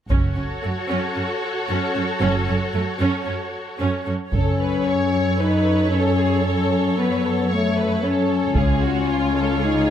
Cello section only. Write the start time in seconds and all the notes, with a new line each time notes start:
0.10 F#2
0.37 F#2
0.64 F#2
0.90 F#2
1.16 F#2
1.69 F#2
1.96 F#2
2.22 F#2
2.48 F#2
2.75 F#2
3.00 F#2
3.27 F#2
3.81 F#2
4.07 F#2
4.33 F#2
8.56 C#2